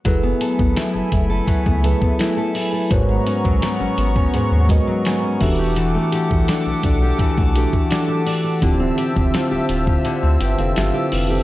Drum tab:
HH |x-x-x-x-x-x-x-o-|x-x-x-x-x-x-x-o-|x-x-x-x-x-x-x-o-|x-x-x-x-x-xxx-o-|
SD |----o-------o---|----o-------o---|----o-------o---|----o-------o---|
BD |o--o--o-oo-o----|o--o---o--o---o-|---o--o-oo-o----|o--o---o--------|